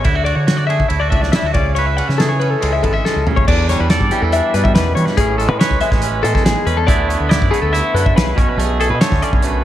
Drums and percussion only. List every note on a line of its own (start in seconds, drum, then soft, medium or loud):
0.04 kick medium
0.04 ride medium
0.26 ride medium
0.48 snare medium
0.48 ride medium
0.70 ride soft
0.80 kick medium
0.90 ride medium
1.12 kick medium
1.12 ride medium
1.23 snare soft
1.33 snare loud
1.33 ride medium
1.54 kick medium
1.54 ride medium
1.76 ride medium
1.98 ride medium
2.09 snare soft
2.20 snare medium
2.20 ride medium
2.41 ride medium
2.62 ride medium
2.84 kick medium
2.84 ride medium
3.06 snare medium
3.27 mid tom medium
3.37 kick medium
3.48 kick loud
3.48 crash loud
3.69 snare soft
3.69 closed hi-hat medium
3.90 snare medium
3.90 closed hi-hat medium
4.01 kick medium
4.11 closed hi-hat medium
4.32 closed hi-hat medium
4.54 closed hi-hat medium
4.65 kick medium
4.75 snare loud
4.75 closed hi-hat medium
4.97 closed hi-hat medium
5.07 snare soft
5.18 kick medium
5.18 closed hi-hat medium
5.40 closed hi-hat medium
5.61 snare loud
5.61 closed hi-hat medium
5.71 kick medium
5.81 closed hi-hat medium
5.92 kick medium
5.92 snare soft
6.02 closed hi-hat medium
6.25 closed hi-hat medium
6.35 kick medium
6.35 snare soft
6.46 snare loud
6.46 closed hi-hat medium
6.67 closed hi-hat medium
6.88 kick loud
6.88 closed hi-hat medium
7.10 closed hi-hat medium
7.31 snare medium
7.31 closed hi-hat medium
7.42 kick medium
7.54 closed hi-hat medium
7.74 closed hi-hat medium
7.96 closed hi-hat medium
8.06 kick medium
8.18 snare loud
8.18 closed hi-hat medium
8.38 kick loud
8.38 closed hi-hat medium
8.59 closed hi-hat medium
8.80 closed hi-hat medium
9.01 snare loud
9.01 closed hi-hat medium
9.12 kick medium
9.12 snare soft
9.22 closed hi-hat medium
9.33 kick medium
9.42 closed hi-hat medium